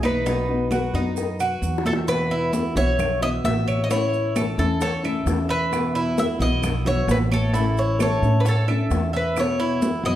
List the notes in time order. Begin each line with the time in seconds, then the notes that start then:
Already playing: B1 E3 G#3 D#4 E4
0.03 D#4 B4, high conga, claves, maracas
0.25 B2 F#3 B3 D#4 F#4, high bongo, high conga, maracas
0.48 F#3 B3 D#4 F#4, high conga
0.71 F#3 B3 D#4 F#4, high bongo, high conga, claves, maracas
0.93 F#2 F#3 B3 D#4 F#4, high bongo, high conga, maracas
1.16 muted nylon-string guitar stroke, high bongo, high conga, maracas
1.40 F#4, high conga, claves, maracas
1.61 E2 F#3 B3 D#4 F#4, high conga, maracas
1.78 low bongo
1.85 A4 E5, high conga, maracas
1.93 low bongo
2.07 B2 E3 B3 E4 F#4 B4, high bongo, high conga, claves, maracas
2.31 E4, high conga, maracas
2.53 E3 B3 E4 F#4, high bongo, high conga, maracas
2.75 B1 E3 B3 E4 F#4 C#5 E5, high conga, maracas
2.98 muted nylon-string guitar stroke, high bongo, high conga, low conga, claves, maracas
3.21 E3 B3 E4 F#4 D#5 E5, high conga, maracas
3.44 A1 E3 B3 E4 F#4 E5, high bongo, low bongo, high conga, maracas
3.68 C#5, claves, maracas
3.84 D#5
3.89 E3 A3 C#4 E4 C#5, high bongo, high conga, maracas
4.13 high conga, maracas
4.35 E3 A3 C#4 E4 A4, high bongo, high conga, claves, maracas
4.58 E2 A3 C#4 E4 A4, high bongo, high conga, maracas
4.81 A4 C#5, muted nylon-string guitar stroke, high bongo, high conga, maracas
5.03 A3 C#4 E4 E5, high bongo, high conga, claves, maracas
5.26 E2 E3 A3 C#4 E4, high bongo, low bongo, high conga, maracas
5.49 B4 E5, high bongo, high conga, maracas
5.71 B2 E3 B3 E4 F#4, high bongo, high conga, claves, maracas
5.95 E4, high conga, maracas
6.17 E3 B3 E4 F#4 E5, high bongo, high conga, maracas
6.39 B1 E3 B3 E4 F#4 D#5, high conga, maracas
6.63 muted nylon-string guitar stroke, high bongo, high conga, low conga, claves, maracas
6.85 E3 B3 E4 F#4 C#5 E5, high conga, low conga, maracas
7.08 A1 E3 B3 E4 F#4 B4, high bongo, low bongo, high conga, maracas
7.32 A4 C#5, high conga, claves, maracas
7.53 E3 A3 C#4 E4, high bongo, maracas
7.77 C#5, high conga, maracas
7.99 E3 A3 C#4 E4 A4 C#5, high bongo, high conga, claves, maracas
8.22 A2 A3 C#4 E4, high bongo, high conga, maracas
8.40 B4
8.45 A4 C#5, muted nylon-string guitar stroke, high bongo, high conga, maracas
8.68 A3 C#4 E4 E5, high bongo, high conga, claves, maracas
8.89 E2 E3 A3 C#4 E4, high bongo, low bongo, high conga, maracas
9.13 B4 E5, high bongo, high conga, maracas
9.35 B2 E3 B3 E4 F#4, high bongo, high conga, claves, maracas
9.39 C#5
9.60 E4, high conga, maracas
9.81 E3 B3 E4 F#4, high bongo, high conga, maracas
10.03 F#2 E3 B3 E4 F#4 D#5, high conga, maracas